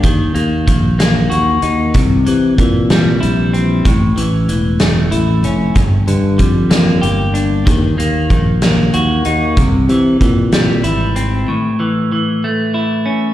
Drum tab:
HH |xxxxxx|xxxxxx|xxxxxx|xxxxxx|
SD |---o--|---o--|---o--|---o--|
BD |o-o---|o-o---|o-----|o-o---|

HH |xxxxxx|xxxxxx|------|
SD |---o--|---o--|------|
BD |o-o---|o-o---|------|